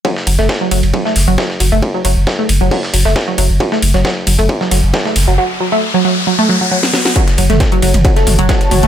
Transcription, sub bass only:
\new Staff \with { instrumentName = "Sub bass" } { \clef bass \time 4/4 \key fis \minor \tempo 4 = 135 r8 fis,,16 fis,,16 r8 fis,,16 fis,,16 r8 fis,,16 fis,,16 r8 fis,,16 fis,,16 | r8 fis,,16 fis,,16 r8 fis,,16 fis,,16 r8 fis,,16 fis,,16 r8 fis,,16 fis,,16 | r8 fis,,16 fis,,16 r8 fis,,16 fis,,16 r8 fis,,16 fis,,16 r8 fis,,16 fis,,16 | r1 |
r8 fis,,16 fis,,16 r8 fis,,16 fis,,16 r8 fis,,16 fis,,16 r8 fis,,16 fis,,16 | }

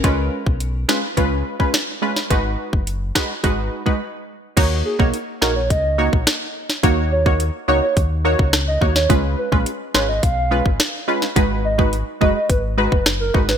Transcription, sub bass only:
\new Staff \with { instrumentName = "Sub bass" } { \clef bass \time 4/4 \key ees \minor \tempo 4 = 106 des,8 r16 ces,8. r8 des,8 r4. | aes,,8 r16 ges,,8. r8 aes,,8 r4. | ees,8 r16 ces,16 r8 bes,,8 des,8. bes,,16 r4 | ees,4~ ees,16 r16 des,16 r16 ees,8. des,8. ees,8 |
des,8 r16 bes,,16 r8 aes,,8 ces,8. aes,,16 r4 | aes,,4~ aes,,16 r16 ges,,16 r16 aes,,8. ges,,8. aes,,8 | }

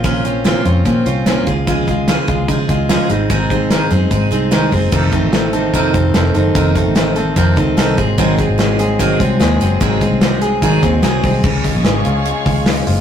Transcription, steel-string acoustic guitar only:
\new Staff \with { instrumentName = "Steel-string acoustic guitar" } { \time 4/4 \key des \major \tempo 4 = 147 <bes, f c' des' f'>8 <c' des' f'>8 <bes, f c' des' f'>8 <c' des' f'>8 <f c' des' f'>8 <c' des' f'>8 <bes, f c' des' f'>8 <aes f' aes'>8 | <des f aes f' aes'>8 <aes f' aes'>8 <des f aes f' aes'>8 <aes f' aes'>8 <f aes f' aes'>8 <aes f' aes'>8 <des f aes f' aes'>8 <aes c' ees' aes'>8 | <aes, ees aes c' ees' aes'>8 <aes c' ees' aes'>8 <aes, ees aes c' ees' aes'>8 <aes c' ees' aes'>8 <aes c' ees' aes'>8 <aes c' ees' aes'>8 <aes, ees aes c' ees' aes'>8 <aes c' ees' aes'>8 | <f, c ees c' ees' a'>8 <ees c' ees' a'>8 <ees c' ees' a'>8 <ees c' ees' a'>8 <f, c ees c' ees' a'>8 <ees c' ees' a'>8 <ees c' ees' a'>8 <ees c' ees' a'>8 |
<f, c ees c' ees' a'>8 <ees c' ees' a'>8 <ees c' ees' a'>8 <ees c' ees' a'>8 <f, c ees c' ees' a'>8 <ees c' ees' a'>8 <ees c' ees' a'>8 <ges aes c' aes'>8 | <aes, ees ges aes c' aes'>8 <ges aes c' aes'>8 <ges aes c' aes'>8 <ges aes c' aes'>8 <aes, ees ges aes c' aes'>8 <ges aes c' aes'>8 <ges aes c' aes'>8 <ges aes c' aes'>8 | <aes, ees ges aes c' aes'>8 <ges aes c' aes'>8 <ges aes c' aes'>8 <ges aes c' aes'>8 <aes, ees ges aes c' aes'>8 <ges aes c' aes'>8 <ges aes c' aes'>8 <ges aes c' aes'>8 | r1 | }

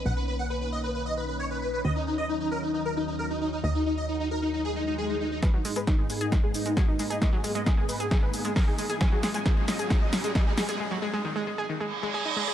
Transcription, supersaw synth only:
\new Staff \with { instrumentName = "Supersaw synth" } { \time 4/4 \key gis \minor \tempo 4 = 134 fis''16 b'16 b'16 fis''16 b'16 b'16 dis''16 b'16 b'16 dis''16 b'16 b'16 cis''16 b'16 b'16 b'16 | dis''16 dis'16 dis'16 dis''16 dis'16 dis'16 ais'16 dis'16 dis'16 ais'16 dis'16 dis'16 ais'16 dis'16 dis'16 dis'16 | dis''16 dis'16 dis'16 dis''16 dis'16 dis'16 ais'16 dis'16 dis'16 gis'16 dis'16 dis'16 gis'16 dis'16 dis'16 dis'16 | b'16 dis'16 dis'16 b'16 dis'16 dis'16 gis'16 dis'16 dis'16 gis'16 dis'16 dis'16 fis'16 dis'16 dis'16 dis'16 |
dis''16 gis'16 gis'16 dis''16 gis'16 gis'16 b'16 gis'16 gis'16 b'16 gis'16 gis'16 ais'16 gis'16 gis'16 gis'16 | gis''16 gis'16 gis'16 gis''16 gis'16 gis'16 dis''16 gis'16 gis'16 dis''16 gis'16 gis'16 dis''16 gis'16 gis'16 gis'16 | r1 | }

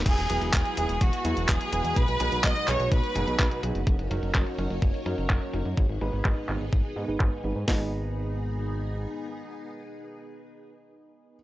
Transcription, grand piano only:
\new Staff \with { instrumentName = "Grand piano" } { \time 4/4 \key gis \minor \tempo 4 = 126 r8 <fis b e' gis'>4 <fis b e' gis'>16 r8. <fis b e' gis'>4 <b, fis b e' gis'>16 r16 | r8 <b, fis b dis' gis'>4 <b, fis b dis' gis'>16 r8. <b, fis b dis' gis'>4 <fis b dis' gis'>16 r16 | r8 <fis cis' dis' ais'>4 <fis cis' dis' ais'>16 r8. <fis cis' dis' ais'>4 <fis cis' dis' ais'>16 r16 | r8 <gis, gis b dis' b'>4 <gis, gis b dis' b'>16 r8. <gis, gis b dis' b'>16 <gis, gis b dis' b'>8. <gis, gis b dis' b'>16 r16 |
<b dis' gis' dis''>1~ | <b dis' gis' dis''>1 | }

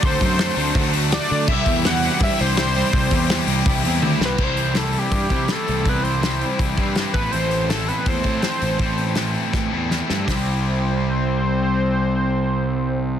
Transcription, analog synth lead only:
\new Staff \with { instrumentName = "Analog synth lead" } { \time 4/4 \key c \lydian \tempo 4 = 163 c''8 c''2 r8 d''4 | e''4 fis''4 e''8 c''8 c''8 c''8~ | c''4. r2 b'8 | c''4 a'8 g'4. a'4 |
b'8 c''4. r4. b'8 | c''4 a'8 b'8 c''2~ | c''2. r4 | c''1~ |
c''1 | }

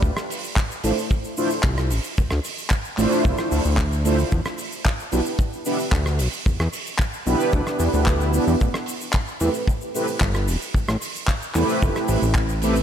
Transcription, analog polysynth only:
\new Staff \with { instrumentName = "Analog polysynth" } { \time 4/4 \key d \dorian \tempo 4 = 112 r4. <a d' e' f' c''>16 r8. <a d' e' f' c''>16 r4 r16 | r4. <a d' e' f' c''>4~ <a d' e' f' c''>16 r8. <a d' e' f' c''>16 r16 | r4. <b d' e' g' b'>16 r8. <b d' e' g' b'>16 r4 r16 | r4. <b d' e' g' b'>4~ <b d' e' g' b'>16 <b d' e' g' b'>8. <b d' e' g' b'>16 <b d' e' g' b'>16 |
r4. <a c' e' g' b'>16 r8. <a c' e' g' b'>16 r4 r16 | r4. <a c' e' g' b'>4~ <a c' e' g' b'>16 r8. <a c' e' g' b'>16 r16 | }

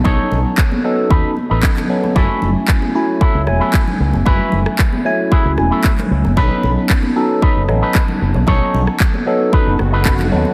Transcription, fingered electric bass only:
\new Staff \with { instrumentName = "Fingered electric bass" } { \clef bass \time 4/4 \key b \mixolydian \tempo 4 = 114 b,,16 r16 b,,16 r4 r16 dis,16 r8 a,,16 r4 | fis,,16 r16 fis,,16 r4. cis,16 e,,16 r8. cis,16 fis,,16 | fis,,16 r16 fis,,16 r4. cis,16 e,,16 r8. cis,16 fis,,16 | b,,16 r16 b,,16 r4. fis,,16 a,,16 r8. fis,,16 b,,16 |
b,,16 r16 b,,16 r4. fis,,16 fis,,4 dis,16 r16 | }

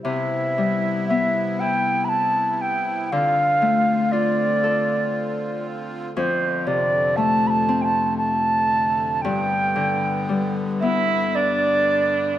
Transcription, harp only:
\new Staff \with { instrumentName = "Harp" } { \clef bass \time 3/4 \key c \major \tempo 4 = 58 c8 g8 b8 e'4. | d8 a8 f'8 a'4. | f,8 c8 a8 c'4. | g,8 d8 g8 b4. | }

